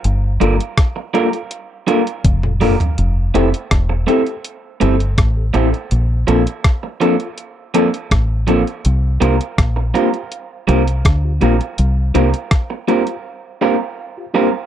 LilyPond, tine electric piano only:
\new Staff \with { instrumentName = "Tine electric piano" } { \time 4/4 \key c \mixolydian \tempo 4 = 82 r8 <bes d' f' a'>16 r8. <bes d' f' a'>16 <f' a'>16 r8 <bes d' f' a'>16 r8 <f' a'>16 <bes d' f' a'>16 r16 | r8 <c' e' g' a'>16 r8. <c' e' g' a'>16 <g' a'>16 r8 <c' e' g' a'>16 r8 <g' a'>16 <c' e' g' a'>16 r16 | r8 <c' d' f' a'>16 r8. <c' d' f' a'>16 <f' a'>16 r8 <c' d' f' a'>16 r8. <c' d' f' a'>16 r16 | r8 <bes d' f' g'>16 r8. <bes d' f' g'>16 r8. <bes d' f' g'>16 r8 <f' g'>16 <bes d' f' g'>16 r16 |
r8 <bes d' f' g'>16 r8. <bes d' f' g'>16 <f' g'>16 r8 <bes d' f' g'>16 r8 <f' g'>16 <bes d' f' g'>16 r16 | }